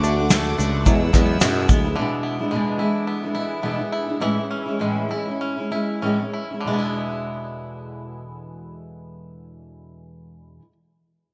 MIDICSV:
0, 0, Header, 1, 7, 480
1, 0, Start_track
1, 0, Tempo, 554017
1, 1696, Time_signature, 4, 2, 24, 8
1, 3148, Tempo, 588813
1, 4588, Tempo, 630252
1, 5548, Tempo, 651466
1, 8994, End_track
2, 0, Start_track
2, 0, Title_t, "String section"
2, 0, Program_c, 0, 48
2, 0, Note_on_c, 0, 69, 76
2, 0, Note_on_c, 0, 78, 75
2, 0, Note_on_c, 0, 86, 84
2, 737, Note_off_c, 0, 69, 0
2, 737, Note_off_c, 0, 86, 0
2, 748, Note_on_c, 0, 68, 77
2, 748, Note_on_c, 0, 88, 85
2, 1682, Note_off_c, 0, 78, 0
2, 1690, Note_off_c, 0, 68, 0
2, 1690, Note_off_c, 0, 88, 0
2, 8994, End_track
3, 0, Start_track
3, 0, Title_t, "Nylon-string guitar"
3, 0, Program_c, 1, 24
3, 0, Note_on_c, 1, 66, 91
3, 713, Note_off_c, 1, 66, 0
3, 8994, End_track
4, 0, Start_track
4, 0, Title_t, "Five-string banjo"
4, 0, Program_c, 2, 105
4, 0, Note_on_c, 2, 50, 77
4, 31, Note_on_c, 2, 62, 64
4, 270, Note_on_c, 2, 57, 65
4, 495, Note_off_c, 2, 62, 0
4, 506, Note_on_c, 2, 62, 57
4, 743, Note_off_c, 2, 50, 0
4, 747, Note_on_c, 2, 54, 83
4, 796, Note_off_c, 2, 62, 0
4, 797, Note_off_c, 2, 57, 0
4, 981, Note_on_c, 2, 59, 59
4, 1224, Note_on_c, 2, 56, 61
4, 1457, Note_off_c, 2, 59, 0
4, 1460, Note_on_c, 2, 59, 57
4, 1691, Note_off_c, 2, 54, 0
4, 1694, Note_on_c, 2, 50, 70
4, 1702, Note_on_c, 2, 64, 60
4, 1930, Note_off_c, 2, 59, 0
4, 1933, Note_on_c, 2, 59, 48
4, 2171, Note_off_c, 2, 56, 0
4, 2175, Note_on_c, 2, 56, 58
4, 2414, Note_off_c, 2, 59, 0
4, 2417, Note_off_c, 2, 64, 0
4, 2417, Note_on_c, 2, 64, 50
4, 2659, Note_off_c, 2, 64, 0
4, 2663, Note_on_c, 2, 59, 55
4, 2899, Note_on_c, 2, 64, 53
4, 3136, Note_off_c, 2, 59, 0
4, 3147, Note_on_c, 2, 59, 49
4, 3382, Note_off_c, 2, 64, 0
4, 3385, Note_on_c, 2, 64, 55
4, 3617, Note_off_c, 2, 50, 0
4, 3622, Note_on_c, 2, 52, 70
4, 3624, Note_off_c, 2, 59, 0
4, 3627, Note_off_c, 2, 64, 0
4, 3627, Note_on_c, 2, 64, 57
4, 3670, Note_off_c, 2, 56, 0
4, 3859, Note_on_c, 2, 61, 49
4, 4103, Note_off_c, 2, 52, 0
4, 4107, Note_on_c, 2, 56, 53
4, 4349, Note_off_c, 2, 64, 0
4, 4349, Note_on_c, 2, 64, 50
4, 4586, Note_off_c, 2, 61, 0
4, 4595, Note_on_c, 2, 61, 52
4, 4830, Note_off_c, 2, 64, 0
4, 4830, Note_on_c, 2, 64, 51
4, 5053, Note_off_c, 2, 61, 0
4, 5063, Note_on_c, 2, 61, 46
4, 5300, Note_off_c, 2, 64, 0
4, 5300, Note_on_c, 2, 64, 45
4, 5502, Note_off_c, 2, 56, 0
4, 5505, Note_on_c, 2, 50, 56
4, 5555, Note_off_c, 2, 61, 0
4, 5558, Note_on_c, 2, 56, 63
4, 5600, Note_on_c, 2, 59, 60
4, 5635, Note_off_c, 2, 64, 0
4, 5638, Note_on_c, 2, 64, 59
4, 8411, Note_off_c, 2, 50, 0
4, 8463, Note_off_c, 2, 56, 0
4, 8505, Note_off_c, 2, 59, 0
4, 8543, Note_off_c, 2, 64, 0
4, 8994, End_track
5, 0, Start_track
5, 0, Title_t, "Steel-string acoustic guitar"
5, 0, Program_c, 3, 25
5, 15, Note_on_c, 3, 50, 66
5, 29, Note_on_c, 3, 57, 63
5, 34, Note_on_c, 3, 62, 74
5, 40, Note_on_c, 3, 66, 80
5, 136, Note_off_c, 3, 66, 0
5, 145, Note_off_c, 3, 62, 0
5, 147, Note_on_c, 3, 66, 58
5, 153, Note_off_c, 3, 50, 0
5, 155, Note_on_c, 3, 62, 54
5, 160, Note_off_c, 3, 57, 0
5, 169, Note_on_c, 3, 57, 48
5, 254, Note_off_c, 3, 57, 0
5, 258, Note_off_c, 3, 62, 0
5, 259, Note_on_c, 3, 50, 82
5, 260, Note_off_c, 3, 66, 0
5, 265, Note_on_c, 3, 57, 84
5, 269, Note_on_c, 3, 62, 78
5, 275, Note_on_c, 3, 66, 87
5, 494, Note_off_c, 3, 50, 0
5, 501, Note_off_c, 3, 57, 0
5, 504, Note_on_c, 3, 50, 70
5, 506, Note_off_c, 3, 62, 0
5, 509, Note_off_c, 3, 66, 0
5, 511, Note_on_c, 3, 57, 71
5, 525, Note_on_c, 3, 62, 77
5, 528, Note_on_c, 3, 66, 76
5, 743, Note_off_c, 3, 50, 0
5, 746, Note_off_c, 3, 57, 0
5, 746, Note_on_c, 3, 47, 76
5, 747, Note_on_c, 3, 40, 72
5, 751, Note_off_c, 3, 62, 0
5, 752, Note_on_c, 3, 56, 76
5, 753, Note_on_c, 3, 54, 82
5, 754, Note_off_c, 3, 66, 0
5, 754, Note_on_c, 3, 59, 74
5, 760, Note_on_c, 3, 64, 85
5, 866, Note_off_c, 3, 64, 0
5, 876, Note_off_c, 3, 40, 0
5, 876, Note_off_c, 3, 47, 0
5, 876, Note_on_c, 3, 64, 52
5, 879, Note_off_c, 3, 54, 0
5, 879, Note_off_c, 3, 56, 0
5, 880, Note_off_c, 3, 59, 0
5, 889, Note_on_c, 3, 59, 55
5, 897, Note_on_c, 3, 54, 43
5, 897, Note_on_c, 3, 56, 47
5, 982, Note_off_c, 3, 64, 0
5, 986, Note_off_c, 3, 54, 0
5, 989, Note_off_c, 3, 59, 0
5, 993, Note_off_c, 3, 56, 0
5, 996, Note_on_c, 3, 54, 56
5, 1003, Note_on_c, 3, 56, 63
5, 1011, Note_on_c, 3, 59, 64
5, 1020, Note_on_c, 3, 64, 65
5, 1222, Note_off_c, 3, 54, 0
5, 1222, Note_on_c, 3, 40, 72
5, 1225, Note_off_c, 3, 56, 0
5, 1225, Note_on_c, 3, 47, 87
5, 1228, Note_off_c, 3, 59, 0
5, 1229, Note_off_c, 3, 64, 0
5, 1233, Note_on_c, 3, 54, 91
5, 1235, Note_on_c, 3, 56, 82
5, 1239, Note_on_c, 3, 59, 76
5, 1240, Note_on_c, 3, 64, 88
5, 1450, Note_off_c, 3, 54, 0
5, 1459, Note_off_c, 3, 40, 0
5, 1460, Note_on_c, 3, 54, 64
5, 1461, Note_off_c, 3, 47, 0
5, 1463, Note_off_c, 3, 56, 0
5, 1464, Note_off_c, 3, 59, 0
5, 1468, Note_off_c, 3, 64, 0
5, 1473, Note_on_c, 3, 56, 74
5, 1474, Note_on_c, 3, 59, 77
5, 1487, Note_on_c, 3, 64, 74
5, 1588, Note_off_c, 3, 64, 0
5, 1590, Note_off_c, 3, 54, 0
5, 1597, Note_off_c, 3, 56, 0
5, 1597, Note_off_c, 3, 59, 0
5, 1599, Note_on_c, 3, 64, 66
5, 1612, Note_on_c, 3, 59, 56
5, 1619, Note_on_c, 3, 56, 52
5, 1625, Note_on_c, 3, 54, 54
5, 1701, Note_off_c, 3, 64, 0
5, 1708, Note_off_c, 3, 59, 0
5, 1712, Note_off_c, 3, 56, 0
5, 1712, Note_on_c, 3, 40, 72
5, 1715, Note_off_c, 3, 54, 0
5, 1718, Note_on_c, 3, 52, 70
5, 1720, Note_on_c, 3, 47, 69
5, 1721, Note_on_c, 3, 56, 76
5, 1725, Note_on_c, 3, 64, 75
5, 1727, Note_on_c, 3, 62, 80
5, 2061, Note_off_c, 3, 64, 0
5, 2067, Note_off_c, 3, 62, 0
5, 2071, Note_on_c, 3, 64, 55
5, 2075, Note_off_c, 3, 40, 0
5, 2075, Note_off_c, 3, 56, 0
5, 2078, Note_off_c, 3, 52, 0
5, 2078, Note_on_c, 3, 62, 52
5, 2079, Note_off_c, 3, 47, 0
5, 2086, Note_on_c, 3, 56, 50
5, 2089, Note_on_c, 3, 52, 43
5, 2175, Note_on_c, 3, 40, 79
5, 2177, Note_off_c, 3, 52, 0
5, 2177, Note_off_c, 3, 56, 0
5, 2178, Note_off_c, 3, 64, 0
5, 2181, Note_off_c, 3, 62, 0
5, 2181, Note_on_c, 3, 47, 76
5, 2187, Note_on_c, 3, 52, 75
5, 2187, Note_on_c, 3, 56, 77
5, 2190, Note_on_c, 3, 62, 82
5, 2194, Note_on_c, 3, 64, 84
5, 2407, Note_off_c, 3, 52, 0
5, 2415, Note_off_c, 3, 56, 0
5, 2416, Note_off_c, 3, 40, 0
5, 2417, Note_on_c, 3, 52, 58
5, 2419, Note_off_c, 3, 47, 0
5, 2421, Note_off_c, 3, 62, 0
5, 2426, Note_off_c, 3, 64, 0
5, 2426, Note_on_c, 3, 56, 59
5, 2431, Note_on_c, 3, 62, 68
5, 2444, Note_on_c, 3, 64, 63
5, 2789, Note_off_c, 3, 64, 0
5, 2793, Note_off_c, 3, 52, 0
5, 2795, Note_off_c, 3, 62, 0
5, 2797, Note_off_c, 3, 56, 0
5, 2800, Note_on_c, 3, 64, 49
5, 2806, Note_on_c, 3, 62, 50
5, 2818, Note_on_c, 3, 56, 45
5, 2823, Note_on_c, 3, 52, 42
5, 2884, Note_off_c, 3, 52, 0
5, 2892, Note_off_c, 3, 56, 0
5, 2895, Note_on_c, 3, 52, 56
5, 2902, Note_off_c, 3, 62, 0
5, 2902, Note_on_c, 3, 56, 58
5, 2906, Note_off_c, 3, 64, 0
5, 2912, Note_on_c, 3, 62, 64
5, 2924, Note_on_c, 3, 64, 62
5, 3132, Note_off_c, 3, 52, 0
5, 3135, Note_off_c, 3, 56, 0
5, 3137, Note_on_c, 3, 40, 68
5, 3140, Note_off_c, 3, 62, 0
5, 3140, Note_on_c, 3, 47, 80
5, 3143, Note_on_c, 3, 52, 72
5, 3145, Note_off_c, 3, 64, 0
5, 3145, Note_on_c, 3, 56, 74
5, 3150, Note_on_c, 3, 62, 84
5, 3155, Note_on_c, 3, 64, 77
5, 3256, Note_off_c, 3, 64, 0
5, 3263, Note_off_c, 3, 62, 0
5, 3266, Note_on_c, 3, 64, 46
5, 3269, Note_off_c, 3, 56, 0
5, 3271, Note_off_c, 3, 40, 0
5, 3273, Note_off_c, 3, 47, 0
5, 3273, Note_on_c, 3, 62, 46
5, 3274, Note_off_c, 3, 52, 0
5, 3279, Note_on_c, 3, 56, 44
5, 3293, Note_on_c, 3, 52, 40
5, 3491, Note_off_c, 3, 64, 0
5, 3498, Note_off_c, 3, 62, 0
5, 3501, Note_on_c, 3, 64, 52
5, 3507, Note_off_c, 3, 56, 0
5, 3508, Note_on_c, 3, 62, 51
5, 3509, Note_off_c, 3, 52, 0
5, 3517, Note_on_c, 3, 56, 44
5, 3519, Note_on_c, 3, 52, 50
5, 3601, Note_off_c, 3, 52, 0
5, 3605, Note_off_c, 3, 56, 0
5, 3610, Note_on_c, 3, 45, 74
5, 3611, Note_on_c, 3, 52, 74
5, 3613, Note_off_c, 3, 64, 0
5, 3614, Note_off_c, 3, 62, 0
5, 3615, Note_on_c, 3, 56, 76
5, 3617, Note_on_c, 3, 61, 74
5, 3622, Note_on_c, 3, 64, 81
5, 3727, Note_off_c, 3, 64, 0
5, 3737, Note_on_c, 3, 64, 44
5, 3743, Note_off_c, 3, 61, 0
5, 3745, Note_off_c, 3, 45, 0
5, 3745, Note_off_c, 3, 52, 0
5, 3747, Note_off_c, 3, 56, 0
5, 3753, Note_on_c, 3, 61, 38
5, 3757, Note_on_c, 3, 56, 39
5, 3971, Note_off_c, 3, 64, 0
5, 3980, Note_on_c, 3, 64, 55
5, 3983, Note_off_c, 3, 61, 0
5, 3992, Note_off_c, 3, 56, 0
5, 3993, Note_on_c, 3, 61, 49
5, 4005, Note_on_c, 3, 56, 43
5, 4088, Note_off_c, 3, 56, 0
5, 4091, Note_on_c, 3, 45, 74
5, 4093, Note_off_c, 3, 64, 0
5, 4095, Note_off_c, 3, 61, 0
5, 4095, Note_on_c, 3, 52, 79
5, 4097, Note_on_c, 3, 56, 75
5, 4104, Note_on_c, 3, 61, 84
5, 4106, Note_on_c, 3, 64, 79
5, 4324, Note_off_c, 3, 52, 0
5, 4333, Note_off_c, 3, 56, 0
5, 4334, Note_on_c, 3, 52, 60
5, 4338, Note_off_c, 3, 45, 0
5, 4343, Note_off_c, 3, 61, 0
5, 4343, Note_on_c, 3, 56, 57
5, 4346, Note_off_c, 3, 64, 0
5, 4353, Note_on_c, 3, 61, 61
5, 4361, Note_on_c, 3, 64, 59
5, 4462, Note_off_c, 3, 64, 0
5, 4472, Note_on_c, 3, 64, 42
5, 4473, Note_off_c, 3, 52, 0
5, 4478, Note_off_c, 3, 56, 0
5, 4480, Note_off_c, 3, 61, 0
5, 4489, Note_on_c, 3, 61, 46
5, 4496, Note_on_c, 3, 56, 33
5, 4707, Note_off_c, 3, 64, 0
5, 4717, Note_on_c, 3, 64, 51
5, 4719, Note_off_c, 3, 61, 0
5, 4726, Note_off_c, 3, 56, 0
5, 4728, Note_on_c, 3, 61, 41
5, 4740, Note_on_c, 3, 56, 38
5, 4820, Note_on_c, 3, 52, 52
5, 4821, Note_off_c, 3, 56, 0
5, 4823, Note_off_c, 3, 64, 0
5, 4826, Note_off_c, 3, 61, 0
5, 4830, Note_on_c, 3, 56, 59
5, 4835, Note_on_c, 3, 61, 54
5, 4841, Note_on_c, 3, 64, 59
5, 5055, Note_off_c, 3, 52, 0
5, 5057, Note_on_c, 3, 45, 67
5, 5059, Note_off_c, 3, 56, 0
5, 5063, Note_off_c, 3, 61, 0
5, 5064, Note_on_c, 3, 52, 70
5, 5068, Note_off_c, 3, 64, 0
5, 5068, Note_on_c, 3, 56, 68
5, 5072, Note_on_c, 3, 61, 71
5, 5077, Note_on_c, 3, 64, 76
5, 5183, Note_off_c, 3, 64, 0
5, 5191, Note_off_c, 3, 45, 0
5, 5192, Note_on_c, 3, 64, 43
5, 5195, Note_off_c, 3, 52, 0
5, 5195, Note_off_c, 3, 61, 0
5, 5197, Note_off_c, 3, 56, 0
5, 5204, Note_on_c, 3, 61, 44
5, 5211, Note_on_c, 3, 56, 39
5, 5421, Note_off_c, 3, 64, 0
5, 5430, Note_off_c, 3, 61, 0
5, 5430, Note_on_c, 3, 64, 47
5, 5439, Note_on_c, 3, 61, 42
5, 5442, Note_off_c, 3, 56, 0
5, 5451, Note_on_c, 3, 56, 37
5, 5528, Note_on_c, 3, 40, 59
5, 5539, Note_on_c, 3, 47, 59
5, 5545, Note_off_c, 3, 64, 0
5, 5549, Note_off_c, 3, 61, 0
5, 5549, Note_on_c, 3, 52, 60
5, 5550, Note_off_c, 3, 56, 0
5, 5559, Note_on_c, 3, 56, 69
5, 5567, Note_on_c, 3, 62, 61
5, 5577, Note_on_c, 3, 64, 66
5, 8433, Note_off_c, 3, 40, 0
5, 8443, Note_off_c, 3, 47, 0
5, 8453, Note_off_c, 3, 52, 0
5, 8463, Note_off_c, 3, 56, 0
5, 8471, Note_off_c, 3, 62, 0
5, 8481, Note_off_c, 3, 64, 0
5, 8994, End_track
6, 0, Start_track
6, 0, Title_t, "Fretless electric bass"
6, 0, Program_c, 4, 35
6, 0, Note_on_c, 4, 38, 100
6, 470, Note_off_c, 4, 38, 0
6, 512, Note_on_c, 4, 37, 80
6, 728, Note_off_c, 4, 37, 0
6, 752, Note_on_c, 4, 40, 96
6, 967, Note_off_c, 4, 40, 0
6, 992, Note_on_c, 4, 40, 93
6, 1206, Note_off_c, 4, 40, 0
6, 1224, Note_on_c, 4, 42, 96
6, 1441, Note_off_c, 4, 42, 0
6, 1469, Note_on_c, 4, 38, 82
6, 1683, Note_off_c, 4, 38, 0
6, 8994, End_track
7, 0, Start_track
7, 0, Title_t, "Drums"
7, 33, Note_on_c, 9, 82, 54
7, 119, Note_off_c, 9, 82, 0
7, 262, Note_on_c, 9, 82, 72
7, 263, Note_on_c, 9, 38, 115
7, 273, Note_on_c, 9, 39, 83
7, 349, Note_off_c, 9, 82, 0
7, 350, Note_off_c, 9, 38, 0
7, 360, Note_off_c, 9, 39, 0
7, 515, Note_on_c, 9, 82, 61
7, 601, Note_off_c, 9, 82, 0
7, 746, Note_on_c, 9, 82, 68
7, 747, Note_on_c, 9, 36, 88
7, 833, Note_off_c, 9, 36, 0
7, 833, Note_off_c, 9, 82, 0
7, 986, Note_on_c, 9, 36, 90
7, 986, Note_on_c, 9, 82, 60
7, 999, Note_on_c, 9, 39, 68
7, 1073, Note_off_c, 9, 36, 0
7, 1073, Note_off_c, 9, 82, 0
7, 1086, Note_off_c, 9, 39, 0
7, 1220, Note_on_c, 9, 82, 75
7, 1224, Note_on_c, 9, 38, 120
7, 1236, Note_on_c, 9, 39, 74
7, 1307, Note_off_c, 9, 82, 0
7, 1310, Note_off_c, 9, 38, 0
7, 1322, Note_off_c, 9, 39, 0
7, 1465, Note_on_c, 9, 36, 97
7, 1465, Note_on_c, 9, 82, 54
7, 1552, Note_off_c, 9, 36, 0
7, 1552, Note_off_c, 9, 82, 0
7, 8994, End_track
0, 0, End_of_file